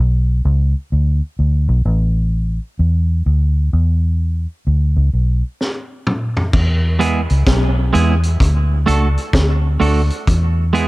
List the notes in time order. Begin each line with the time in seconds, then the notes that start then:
0.00 B1
0.45 C#2
0.92 D2
1.39 D2
1.69 B1
1.85 A1
2.79 E2
3.26 D2
3.73 E2
4.67 D2
4.97 C#2
5.13 B1
5.61 snare
6.07 mid tom
6.37 floor tom
6.53 E2, kick, crash
6.99 G#3 B3 E4 G#4, closed hi-hat
7.30 C#2, closed hi-hat
7.47 B1, kick, snare, closed hi-hat
7.93 E2 G#3 B3 E4 G#4, closed hi-hat
8.23 closed hi-hat
8.40 D2, kick, closed hi-hat
8.86 C#2 A3 D4 F#4 A4, closed hi-hat
9.18 closed hi-hat
9.33 D2, kick, snare, closed hi-hat
9.80 D2 A3 D4 F#4 A4, open hi-hat
10.10 closed hi-hat
10.27 E2, kick, closed hi-hat
10.73 G#3 B3 E4 G#4, closed hi-hat